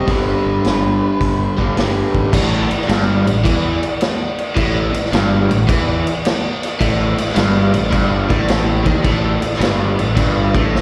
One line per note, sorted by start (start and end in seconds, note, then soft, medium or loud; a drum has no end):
0.06 0.32 G1 medium
0.06 1.55 G2 medium
0.06 1.56 D3 medium
0.06 1.55 G3 medium
0.06 2.30 B3 medium
0.06 2.30 D4 medium
0.06 2.30 G4 medium
0.06 2.30 B4 medium
0.06 kick medium
0.06 open hi-hat soft
0.11 1.74 B4 medium
0.46 0.58 G1 medium
0.64 1.00 G1 medium
0.64 snare medium
0.64 open hi-hat soft
1.21 1.44 G1 medium
1.21 kick medium
1.21 open hi-hat soft
1.57 1.70 G1 medium
1.57 1.74 G2 medium
1.57 1.76 D3 medium
1.57 1.75 G3 medium
1.57 kick medium
1.75 2.01 G1 medium
1.75 2.31 G2 medium
1.75 2.32 D3 medium
1.75 2.33 G3 medium
1.75 snare loud
1.75 open hi-hat medium
2.14 2.26 G#1 medium
2.14 kick medium
2.33 2.68 A1 medium
2.33 2.69 A2 loud
2.33 kick loud
2.33 crash loud
2.33 crash medium
2.71 muted overdriven electric guitar stroke medium
2.71 muted fingered electric bass stroke soft
2.71 crash medium
2.81 snare soft
2.89 3.24 G1 loud
2.89 3.25 G2 loud
2.89 snare loud
2.89 crash medium
3.25 3.44 A1 medium
3.25 3.40 A2 medium
3.25 crash medium
3.44 3.80 E2 loud
3.44 3.81 E3 loud
3.44 kick loud
3.44 crash medium
3.83 crash medium
4.01 snare loud
4.01 crash medium
4.38 crash medium
4.56 4.92 A1 medium
4.56 4.92 A2 loud
4.56 kick loud
4.56 crash medium
4.94 muted overdriven electric guitar stroke medium
4.94 muted fingered electric bass stroke soft
4.94 crash medium
5.06 snare soft
5.12 5.47 G1 loud
5.12 5.49 G2 loud
5.12 snare loud
5.12 crash medium
5.50 5.67 A1 medium
5.50 5.65 A2 medium
5.50 crash medium
5.68 6.04 E2 medium
5.68 6.04 E3 loud
5.68 kick loud
5.68 crash medium
6.07 crash medium
6.25 snare loud
6.25 crash medium
6.63 snare soft
6.63 crash medium
6.80 7.16 A1 loud
6.80 7.17 A2 loud
6.80 9.02 C4 medium
6.80 9.02 E4 medium
6.80 9.02 A4 medium
6.80 9.02 C5 medium
6.80 kick loud
6.80 crash medium
7.18 muted fingered electric bass stroke soft
7.18 muted overdriven electric guitar stroke medium
7.18 crash medium
7.29 snare soft
7.35 7.71 G1 loud
7.35 7.72 G2 loud
7.35 snare loud
7.35 crash medium
7.73 7.91 A1 medium
7.73 7.88 A2 medium
7.73 crash medium
7.90 8.27 G1 medium
7.90 8.28 G2 loud
7.90 kick loud
7.90 crash medium
8.29 8.82 A1 medium
8.29 8.84 A2 loud
8.29 kick medium
8.29 crash medium
8.48 snare loud
8.48 crash medium
8.85 9.03 D#2 loud
8.85 9.03 D#3 loud
8.85 kick loud
8.85 crash medium
9.03 9.39 A1 loud
9.03 9.40 A2 loud
9.03 10.81 E4 medium
9.03 10.81 A4 medium
9.03 10.81 C5 medium
9.03 kick loud
9.03 crash medium
9.41 muted overdriven electric guitar stroke medium
9.41 muted fingered electric bass stroke soft
9.41 crash medium
9.54 snare soft
9.59 9.95 G1 loud
9.59 9.96 G2 loud
9.59 snare loud
9.59 crash medium
9.98 10.15 A1 medium
9.98 10.12 A2 medium
9.98 crash medium
10.16 10.52 G1 loud
10.16 10.53 G2 loud
10.16 kick medium
10.16 crash medium
10.54 10.81 A1 medium
10.54 10.81 A2 loud
10.54 kick loud
10.54 crash medium
10.75 snare medium